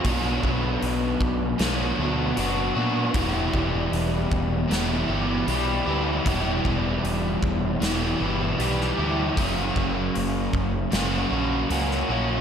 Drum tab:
HH |o---o---o---o---|o---o---o---o---|o---o---o---o---|o---o---o---o---|
SD |--------o-------|--------o-------|--------o----o--|--------o----o--|
BD |o-o---o---------|o-o---o---------|o-o---o---------|o-o---o---------|